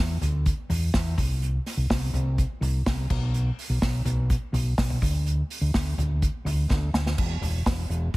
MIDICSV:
0, 0, Header, 1, 3, 480
1, 0, Start_track
1, 0, Tempo, 479808
1, 1421, Time_signature, 4, 2, 24, 8
1, 8172, End_track
2, 0, Start_track
2, 0, Title_t, "Fingered electric bass"
2, 0, Program_c, 0, 33
2, 0, Note_on_c, 0, 40, 108
2, 177, Note_off_c, 0, 40, 0
2, 210, Note_on_c, 0, 38, 85
2, 510, Note_off_c, 0, 38, 0
2, 694, Note_on_c, 0, 40, 89
2, 894, Note_off_c, 0, 40, 0
2, 940, Note_on_c, 0, 40, 108
2, 1137, Note_off_c, 0, 40, 0
2, 1178, Note_on_c, 0, 36, 81
2, 1573, Note_off_c, 0, 36, 0
2, 1771, Note_on_c, 0, 36, 86
2, 1873, Note_off_c, 0, 36, 0
2, 1900, Note_on_c, 0, 36, 104
2, 2097, Note_off_c, 0, 36, 0
2, 2131, Note_on_c, 0, 36, 89
2, 2430, Note_off_c, 0, 36, 0
2, 2609, Note_on_c, 0, 36, 101
2, 2811, Note_off_c, 0, 36, 0
2, 2860, Note_on_c, 0, 36, 109
2, 3057, Note_off_c, 0, 36, 0
2, 3103, Note_on_c, 0, 35, 92
2, 3496, Note_off_c, 0, 35, 0
2, 3695, Note_on_c, 0, 35, 95
2, 3796, Note_off_c, 0, 35, 0
2, 3822, Note_on_c, 0, 35, 101
2, 4018, Note_off_c, 0, 35, 0
2, 4050, Note_on_c, 0, 35, 91
2, 4350, Note_off_c, 0, 35, 0
2, 4528, Note_on_c, 0, 35, 110
2, 4730, Note_off_c, 0, 35, 0
2, 4780, Note_on_c, 0, 35, 101
2, 4977, Note_off_c, 0, 35, 0
2, 5021, Note_on_c, 0, 38, 90
2, 5414, Note_off_c, 0, 38, 0
2, 5614, Note_on_c, 0, 38, 99
2, 5715, Note_off_c, 0, 38, 0
2, 5742, Note_on_c, 0, 38, 98
2, 5938, Note_off_c, 0, 38, 0
2, 5975, Note_on_c, 0, 38, 85
2, 6273, Note_off_c, 0, 38, 0
2, 6451, Note_on_c, 0, 38, 97
2, 6652, Note_off_c, 0, 38, 0
2, 6701, Note_on_c, 0, 38, 107
2, 6898, Note_off_c, 0, 38, 0
2, 6936, Note_on_c, 0, 38, 92
2, 7135, Note_off_c, 0, 38, 0
2, 7178, Note_on_c, 0, 28, 106
2, 7376, Note_off_c, 0, 28, 0
2, 7411, Note_on_c, 0, 28, 81
2, 7612, Note_off_c, 0, 28, 0
2, 7661, Note_on_c, 0, 28, 94
2, 7858, Note_off_c, 0, 28, 0
2, 7895, Note_on_c, 0, 28, 100
2, 8094, Note_off_c, 0, 28, 0
2, 8172, End_track
3, 0, Start_track
3, 0, Title_t, "Drums"
3, 217, Note_on_c, 9, 43, 64
3, 218, Note_on_c, 9, 46, 63
3, 219, Note_on_c, 9, 44, 67
3, 317, Note_off_c, 9, 43, 0
3, 318, Note_off_c, 9, 46, 0
3, 320, Note_off_c, 9, 44, 0
3, 457, Note_on_c, 9, 44, 68
3, 457, Note_on_c, 9, 46, 86
3, 461, Note_on_c, 9, 36, 110
3, 557, Note_off_c, 9, 44, 0
3, 557, Note_off_c, 9, 46, 0
3, 562, Note_off_c, 9, 36, 0
3, 699, Note_on_c, 9, 43, 59
3, 700, Note_on_c, 9, 44, 69
3, 702, Note_on_c, 9, 46, 81
3, 799, Note_off_c, 9, 43, 0
3, 800, Note_off_c, 9, 44, 0
3, 802, Note_off_c, 9, 46, 0
3, 937, Note_on_c, 9, 44, 67
3, 938, Note_on_c, 9, 38, 117
3, 940, Note_on_c, 9, 36, 124
3, 940, Note_on_c, 9, 46, 94
3, 1037, Note_off_c, 9, 44, 0
3, 1038, Note_off_c, 9, 38, 0
3, 1040, Note_off_c, 9, 46, 0
3, 1041, Note_off_c, 9, 36, 0
3, 1178, Note_on_c, 9, 43, 68
3, 1178, Note_on_c, 9, 44, 69
3, 1180, Note_on_c, 9, 36, 116
3, 1183, Note_on_c, 9, 46, 83
3, 1278, Note_off_c, 9, 43, 0
3, 1278, Note_off_c, 9, 44, 0
3, 1280, Note_off_c, 9, 36, 0
3, 1283, Note_off_c, 9, 46, 0
3, 1420, Note_on_c, 9, 46, 94
3, 1421, Note_on_c, 9, 44, 65
3, 1521, Note_off_c, 9, 44, 0
3, 1521, Note_off_c, 9, 46, 0
3, 1663, Note_on_c, 9, 44, 68
3, 1664, Note_on_c, 9, 38, 36
3, 1665, Note_on_c, 9, 46, 76
3, 1764, Note_off_c, 9, 38, 0
3, 1764, Note_off_c, 9, 44, 0
3, 1765, Note_off_c, 9, 46, 0
3, 1903, Note_on_c, 9, 36, 103
3, 1904, Note_on_c, 9, 44, 65
3, 1905, Note_on_c, 9, 38, 117
3, 1910, Note_on_c, 9, 46, 97
3, 2003, Note_off_c, 9, 36, 0
3, 2004, Note_off_c, 9, 44, 0
3, 2005, Note_off_c, 9, 38, 0
3, 2010, Note_off_c, 9, 46, 0
3, 2141, Note_on_c, 9, 43, 65
3, 2142, Note_on_c, 9, 46, 72
3, 2143, Note_on_c, 9, 44, 65
3, 2241, Note_off_c, 9, 43, 0
3, 2242, Note_off_c, 9, 46, 0
3, 2243, Note_off_c, 9, 44, 0
3, 2382, Note_on_c, 9, 46, 87
3, 2383, Note_on_c, 9, 44, 66
3, 2385, Note_on_c, 9, 36, 103
3, 2482, Note_off_c, 9, 46, 0
3, 2483, Note_off_c, 9, 44, 0
3, 2485, Note_off_c, 9, 36, 0
3, 2623, Note_on_c, 9, 43, 62
3, 2624, Note_on_c, 9, 44, 66
3, 2627, Note_on_c, 9, 46, 87
3, 2723, Note_off_c, 9, 43, 0
3, 2724, Note_off_c, 9, 44, 0
3, 2727, Note_off_c, 9, 46, 0
3, 2864, Note_on_c, 9, 36, 114
3, 2865, Note_on_c, 9, 38, 115
3, 2865, Note_on_c, 9, 44, 68
3, 2867, Note_on_c, 9, 46, 90
3, 2964, Note_off_c, 9, 36, 0
3, 2965, Note_off_c, 9, 38, 0
3, 2965, Note_off_c, 9, 44, 0
3, 2967, Note_off_c, 9, 46, 0
3, 3103, Note_on_c, 9, 36, 117
3, 3103, Note_on_c, 9, 43, 72
3, 3103, Note_on_c, 9, 49, 79
3, 3203, Note_off_c, 9, 36, 0
3, 3203, Note_off_c, 9, 43, 0
3, 3203, Note_off_c, 9, 49, 0
3, 3343, Note_on_c, 9, 46, 93
3, 3344, Note_on_c, 9, 44, 67
3, 3443, Note_off_c, 9, 46, 0
3, 3444, Note_off_c, 9, 44, 0
3, 3588, Note_on_c, 9, 44, 64
3, 3589, Note_on_c, 9, 46, 85
3, 3688, Note_off_c, 9, 44, 0
3, 3689, Note_off_c, 9, 46, 0
3, 3821, Note_on_c, 9, 38, 117
3, 3821, Note_on_c, 9, 44, 65
3, 3823, Note_on_c, 9, 36, 101
3, 3827, Note_on_c, 9, 46, 95
3, 3921, Note_off_c, 9, 38, 0
3, 3921, Note_off_c, 9, 44, 0
3, 3923, Note_off_c, 9, 36, 0
3, 3927, Note_off_c, 9, 46, 0
3, 4057, Note_on_c, 9, 43, 68
3, 4057, Note_on_c, 9, 46, 69
3, 4059, Note_on_c, 9, 44, 69
3, 4157, Note_off_c, 9, 43, 0
3, 4157, Note_off_c, 9, 46, 0
3, 4159, Note_off_c, 9, 44, 0
3, 4299, Note_on_c, 9, 46, 90
3, 4300, Note_on_c, 9, 44, 64
3, 4303, Note_on_c, 9, 36, 107
3, 4399, Note_off_c, 9, 46, 0
3, 4400, Note_off_c, 9, 44, 0
3, 4403, Note_off_c, 9, 36, 0
3, 4541, Note_on_c, 9, 43, 61
3, 4542, Note_on_c, 9, 44, 63
3, 4544, Note_on_c, 9, 46, 84
3, 4641, Note_off_c, 9, 43, 0
3, 4642, Note_off_c, 9, 44, 0
3, 4644, Note_off_c, 9, 46, 0
3, 4780, Note_on_c, 9, 44, 69
3, 4781, Note_on_c, 9, 38, 118
3, 4782, Note_on_c, 9, 36, 115
3, 4783, Note_on_c, 9, 46, 96
3, 4880, Note_off_c, 9, 44, 0
3, 4881, Note_off_c, 9, 38, 0
3, 4882, Note_off_c, 9, 36, 0
3, 4883, Note_off_c, 9, 46, 0
3, 4904, Note_on_c, 9, 43, 65
3, 5004, Note_off_c, 9, 43, 0
3, 5022, Note_on_c, 9, 36, 114
3, 5024, Note_on_c, 9, 43, 71
3, 5024, Note_on_c, 9, 44, 70
3, 5029, Note_on_c, 9, 46, 87
3, 5122, Note_off_c, 9, 36, 0
3, 5124, Note_off_c, 9, 43, 0
3, 5124, Note_off_c, 9, 44, 0
3, 5129, Note_off_c, 9, 46, 0
3, 5265, Note_on_c, 9, 46, 96
3, 5266, Note_on_c, 9, 44, 68
3, 5365, Note_off_c, 9, 46, 0
3, 5366, Note_off_c, 9, 44, 0
3, 5506, Note_on_c, 9, 44, 68
3, 5507, Note_on_c, 9, 46, 83
3, 5606, Note_off_c, 9, 44, 0
3, 5607, Note_off_c, 9, 46, 0
3, 5743, Note_on_c, 9, 44, 60
3, 5744, Note_on_c, 9, 36, 99
3, 5744, Note_on_c, 9, 38, 108
3, 5749, Note_on_c, 9, 46, 96
3, 5843, Note_off_c, 9, 44, 0
3, 5844, Note_off_c, 9, 36, 0
3, 5844, Note_off_c, 9, 38, 0
3, 5849, Note_off_c, 9, 46, 0
3, 5985, Note_on_c, 9, 43, 65
3, 5986, Note_on_c, 9, 46, 70
3, 5987, Note_on_c, 9, 44, 63
3, 6085, Note_off_c, 9, 43, 0
3, 6086, Note_off_c, 9, 46, 0
3, 6087, Note_off_c, 9, 44, 0
3, 6224, Note_on_c, 9, 44, 69
3, 6224, Note_on_c, 9, 46, 87
3, 6226, Note_on_c, 9, 36, 110
3, 6324, Note_off_c, 9, 44, 0
3, 6324, Note_off_c, 9, 46, 0
3, 6326, Note_off_c, 9, 36, 0
3, 6466, Note_on_c, 9, 43, 59
3, 6466, Note_on_c, 9, 44, 68
3, 6469, Note_on_c, 9, 46, 84
3, 6566, Note_off_c, 9, 43, 0
3, 6567, Note_off_c, 9, 44, 0
3, 6569, Note_off_c, 9, 46, 0
3, 6704, Note_on_c, 9, 36, 120
3, 6706, Note_on_c, 9, 38, 64
3, 6804, Note_off_c, 9, 36, 0
3, 6806, Note_off_c, 9, 38, 0
3, 6944, Note_on_c, 9, 38, 103
3, 7044, Note_off_c, 9, 38, 0
3, 7067, Note_on_c, 9, 38, 87
3, 7167, Note_off_c, 9, 38, 0
3, 7184, Note_on_c, 9, 36, 104
3, 7184, Note_on_c, 9, 57, 99
3, 7284, Note_off_c, 9, 36, 0
3, 7284, Note_off_c, 9, 57, 0
3, 7428, Note_on_c, 9, 44, 64
3, 7429, Note_on_c, 9, 43, 71
3, 7430, Note_on_c, 9, 46, 76
3, 7529, Note_off_c, 9, 43, 0
3, 7529, Note_off_c, 9, 44, 0
3, 7530, Note_off_c, 9, 46, 0
3, 7664, Note_on_c, 9, 36, 101
3, 7666, Note_on_c, 9, 38, 113
3, 7666, Note_on_c, 9, 44, 62
3, 7672, Note_on_c, 9, 46, 87
3, 7764, Note_off_c, 9, 36, 0
3, 7766, Note_off_c, 9, 44, 0
3, 7767, Note_off_c, 9, 38, 0
3, 7772, Note_off_c, 9, 46, 0
3, 7905, Note_on_c, 9, 46, 66
3, 7907, Note_on_c, 9, 44, 66
3, 8005, Note_off_c, 9, 46, 0
3, 8007, Note_off_c, 9, 44, 0
3, 8172, End_track
0, 0, End_of_file